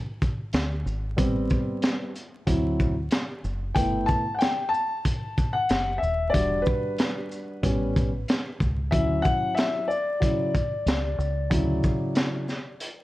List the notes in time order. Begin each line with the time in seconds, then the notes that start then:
0.22 kick, closed hi-hat, shaker
0.53 D2, snare, closed hi-hat
0.86 G#1, shaker
1.16 A1 G3 B3 C4, kick, closed hi-hat
1.50 kick, shaker
1.82 snare, closed hi-hat
2.16 closed hi-hat, shaker
2.46 D2 F#3 C4 E4, kick, closed hi-hat
2.80 kick, shaker
3.11 snare, closed hi-hat
3.44 F#1, shaker
3.75 G1 A3 B3 E4 G5, kick, closed hi-hat
4.06 A5, kick, shaker
4.34 F#5
4.38 G5, snare, closed hi-hat
4.69 A5
4.74 shaker
5.05 kick, closed hi-hat
5.38 kick, closed hi-hat, shaker
5.53 F#5
5.69 F#1, snare, closed hi-hat
5.98 E5
6.02 D#1, shaker
6.30 G3 D5
6.34 E1 D4 F#4, kick, closed hi-hat
6.62 B4, shaker
6.67 kick
6.99 snare, closed hi-hat
7.32 shaker
7.62 A1 G3 B3 C#4, kick, closed hi-hat
7.96 kick, closed hi-hat, shaker
8.28 snare, closed hi-hat
8.60 C#2, kick, shaker
8.91 D2 F#3 C#4 E4 E5, kick, closed hi-hat
9.22 F#5, kick, shaker
9.55 E5, snare, closed hi-hat
9.88 D5, shaker
10.20 C#3 F#3 E4, kick, closed hi-hat
10.55 kick, closed hi-hat, shaker
10.86 C#2, snare, closed hi-hat
11.18 C#2, shaker
11.50 D2 C#3 F#3 E4, kick, closed hi-hat
11.84 kick, shaker
12.15 snare, closed hi-hat
12.49 snare, shaker
12.80 closed hi-hat